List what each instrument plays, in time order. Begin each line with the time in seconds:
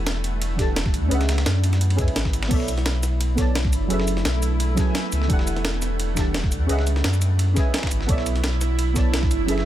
Already playing: sub bass E1, synth stab E3 D4 G4 A4 F#5
0.07 snare, closed hi-hat, ride
0.24 closed hi-hat, ride
0.42 closed hi-hat, ride
0.56 synth stab E3 D4 G4, kick, snare, closed hi-hat, ride
0.60 synth stab A4 A5
0.76 snare, closed hi-hat, ride
0.86 kick, snare
0.94 sub bass E2, closed hi-hat, ride
1.08 sub bass C#2, synth stab C#4 G#4 B4 D#5, closed hi-hat, ride
1.13 synth stab E5 F#5
1.21 snare, closed hi-hat
1.29 snare, closed hi-hat, ride
1.38 snare, ride
1.46 sub bass F#2, snare, closed hi-hat, ride
1.64 closed hi-hat, ride
1.73 snare, closed hi-hat
1.81 closed hi-hat, ride
1.90 ride
1.96 synth stab C#4 G#4 B4 D#5, kick, snare, closed hi-hat
2.00 synth stab E5 G#5
2.08 sub bass G#1, ride
2.16 snare, closed hi-hat, ride
2.25 kick, snare
2.33 closed hi-hat, ride
2.43 snare, ride
2.48 sub bass B1, ambient pad A3 E4, synth stab B3 A4 C#5, kick, closed hi-hat, crash, ride
2.52 synth stab D5 E5
2.60 snare
2.68 closed hi-hat, ride, shaker
2.77 snare, ride
2.86 snare, closed hi-hat, ride
3.03 snare, closed hi-hat, ride, shaker
3.21 closed hi-hat, ride
3.35 synth stab B3 A4 C#5, kick, snare, closed hi-hat, ride, shaker
3.40 synth stab D5 A5
3.55 snare, closed hi-hat, ride
3.65 kick, snare
3.73 sub bass F#1, closed hi-hat, ride, shaker
3.87 sub bass F#1, synth stab F#3 C#4 G#4 A4, closed hi-hat, ride
3.92 synth stab B4 E5
4.00 snare
4.08 closed hi-hat, ride, shaker
4.17 snare
4.25 sub bass B1, snare, closed hi-hat, ride
4.42 closed hi-hat, ride, shaker
4.60 closed hi-hat, ride
4.75 synth stab F#3 C#4 G#4 A4, kick, snare, closed hi-hat, ride, shaker
4.79 synth stab B4 G#5
4.95 snare, closed hi-hat, ride
5.12 sub bass C#2, closed hi-hat, ride, shaker
5.22 snare
5.27 sub bass E1, synth stab E3 D4 G4, kick, closed hi-hat, ride
5.31 synth stab A4 F#5
5.39 snare
5.47 closed hi-hat, ride, shaker
5.56 snare, ride
5.65 snare, closed hi-hat, ride
5.82 snare, closed hi-hat, ride, shaker
6.00 closed hi-hat, ride
6.14 synth stab E3 D4 G4, kick, snare, closed hi-hat, ride, shaker
6.19 synth stab A4 A5
6.34 snare, closed hi-hat, ride
6.44 kick, snare
6.52 sub bass E2, closed hi-hat, ride, shaker
6.66 sub bass C#2, synth stab C#4 G#4 B4 D#5, ambient pad E4, closed hi-hat, ride
6.71 synth stab E5 F#5
6.79 snare
6.87 closed hi-hat, ride, shaker
6.96 snare
7.04 sub bass F#2, snare, closed hi-hat, ride
7.14 shaker
7.22 closed hi-hat, ride, shaker
7.39 closed hi-hat, ride
7.54 synth stab C#4 G#4 B4 D#5, kick, snare, closed hi-hat, ride, shaker
7.58 synth stab E5 G#5
7.74 snare, closed hi-hat, ride
7.78 snare, ride
7.83 kick, snare, ride
7.87 snare, ride
7.91 sub bass G#1, closed hi-hat, ride, shaker
8.01 snare
8.06 sub bass B1, ambient pad A3, synth stab B3 A4 C#5, kick, closed hi-hat, ride
8.10 synth stab D5 E5
8.18 snare
8.26 closed hi-hat, ride, shaker
8.36 snare, ride
8.44 snare, closed hi-hat, ride
8.61 snare, closed hi-hat, ride, shaker
8.79 closed hi-hat, ride
8.93 synth stab B3 A4 C#5, kick, snare, closed hi-hat, ride, shaker
8.98 synth stab D5 A5
9.14 snare, closed hi-hat, ride
9.23 kick, snare
9.31 sub bass F#1, closed hi-hat, ride, shaker
9.46 sub bass F#1, synth stab F#3 C#4 G#4 A4, closed hi-hat, ride
9.50 synth stab B4 E5
9.58 snare